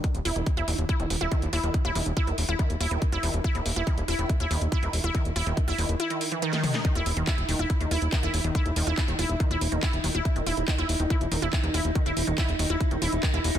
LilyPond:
<<
  \new Staff \with { instrumentName = "Ambient pad" } { \time 4/4 \tempo 4 = 141 r1 | r1 | r1 | r1 |
ees'1~ | ees'1~ | ees'1~ | ees'1 | }
  \new Staff \with { instrumentName = "Synth arpeggio sound" } { \clef bass \time 4/4 ees16 r16 fes'16 ees16 r16 fes'16 ees16 r16 fes'16 ees16 r16 fes'16 ees16 r16 fes'16 ees16 | r16 fes'16 ees16 r16 fes'16 ees16 r16 fes'16 ees16 r16 fes'16 ees16 r16 fes'16 ees16 r16 | fes'16 ees16 r16 fes'16 ees16 r16 fes'16 ees16 r16 fes'16 ees16 r16 fes'16 ees16 r16 fes'16 | ees16 r16 fes'16 ees16 r16 fes'16 ees16 r16 fes'16 ees16 r16 fes16 ees16 ees16 ees16 ees'16 |
ees16 fes'16 r16 ees16 fes'16 r16 ees16 fes'16 r16 ees16 fes'16 r16 ees16 fes'16 r16 ees16 | fes'16 r16 ees16 fes'16 r16 ees16 fes'16 r16 ees16 fes'16 r16 ees16 fes'16 r16 ees16 fes'16 | r16 ees16 fes'16 r16 ees16 fes'16 r16 ees16 fes'16 r16 ees16 fes'16 r16 ees16 fes'16 r16 | ees16 fes'16 r16 ees16 fes'16 r16 ees16 fes'16 r16 ees16 fes'16 r16 ees16 fes'16 r16 ees16 | }
  \new Staff \with { instrumentName = "Analog synth bass" } { \clef bass \time 4/4 r16 ees,,16 ees,,16 ees,,16 r16 ees,,16 ees,,16 ees,,16 r16 ees,,16 ees,,16 ees,,16 r16 ees,,16 ees,,16 ees,,16 | r16 ees,,16 ees,,16 ees,,16 r16 ees,,16 ees,,16 ees,,16 r16 ees,,16 ees,,16 ees,,16 r16 ees,,16 ees,,16 ees,,16 | r16 ees,,16 ees,,16 ees,,16 r16 ees,,16 ees,,16 ees,,16 r16 ees,,16 ees,,16 ees,,16 r16 ees,,16 ees,,16 ees,,16 | r16 ees,,16 ees,,16 ees,,16 r16 ees,,16 ees,,16 ees,,16 r2 |
r16 ees,,16 ees,,16 ees,,16 r16 ees,,16 ees,,16 ees,,16 r16 ees,,16 ees,,16 ees,,16 r16 ees,,16 ees,,16 ees,,16 | r16 ees,,16 ees,,16 ees,,16 r16 ees,,16 ees,,16 ees,,16 r16 ees,,16 ees,,16 ees,,16 r16 ees,,16 ees,,16 ees,,16 | r16 ees,,16 ees,,16 ees,,16 r16 ees,,16 ees,,16 ees,,16 r16 ees,,16 ees,,16 ees,,16 r16 ees,,16 ees,,16 ees,,16 | r16 ees,,16 ees,,16 ees,,16 r16 ees,,16 ees,,16 ees,,16 r16 ees,,16 ees,,16 ees,,16 r16 ees,,16 ees,,16 ees,,16 | }
  \new DrumStaff \with { instrumentName = "Drums" } \drummode { \time 4/4 <hh bd>16 hh16 hho16 hh16 <hh bd>16 hh16 hho16 hh16 <hh bd>16 hh16 hho8 <hh bd>16 hh16 hho16 hh16 | <hh bd>16 hh16 hho16 hh16 <hh bd>16 hh16 hho16 hh16 <hh bd>16 hh16 hho16 hh16 <hh bd>16 hh16 hho16 hh16 | <hh bd>16 hh16 hho16 hh16 <hh bd>16 hh16 hho16 hh16 <hh bd>16 hh16 hho16 hh16 <hh bd>16 hh16 hho16 hh16 | <hh bd>16 hh16 hho16 hh16 <hh bd>16 hho16 hho16 hh16 hh16 hh16 hho16 hh16 hh16 <hh sn>16 <hho toml>16 <hh sn>16 |
<hh bd>16 hh16 hho16 hh16 <hc hh bd>16 hh16 hho16 hh16 <hh bd>16 hh16 hho16 hh16 <hc hh bd>16 hh16 hho16 hh16 | <hh bd>16 hh16 hho16 hh16 <hc hh bd>16 hh16 hho16 hh16 <hh bd>16 hh16 hho16 hh16 <hc hh bd>16 hh16 hho16 hh16 | <hh bd>16 hh16 hho16 hh16 <hc hh bd>16 hh16 hho16 hh16 <hh bd>16 hh16 hho16 hh16 <hc hh bd>16 hh16 hho16 hh16 | <hh bd>16 hh16 hho16 hh16 <hc hh bd>16 hh16 hho16 hh16 <hh bd>16 hh16 hho16 hh16 <hc hh bd>16 hh16 hho16 hh16 | }
>>